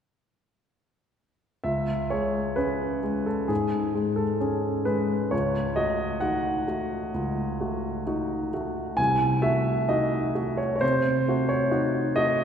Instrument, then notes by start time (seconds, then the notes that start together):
grand piano
1.64 C#2 E5
2.10 G#3 G#4 C#5
2.56 C#4 G#4 B4
3.03 G#3 G#4
3.26 A4
3.48 G#2 G#4
3.95 G#3 G#4
4.16 A4
4.40 C#4 G#4
4.85 G#3 G#4 B4
5.31 C#2 C#5
5.76 A3 F#4 D#5
6.20 D#4 F#4 F#5
6.67 A3 F#4
7.14 C#2
7.60 A3 F#4
8.07 D#4 F#4
8.54 A3 F#4
8.97 C2 G#5
9.42 A3 F#4 E5
9.89 D#4 F#4 D#5
10.35 A3 F#4
10.57 C#5
10.76 C#5
10.81 C3 C5
11.28 A3 F#4
11.49 C#5
11.71 D#4 F#4
12.16 A3 F#4 D#5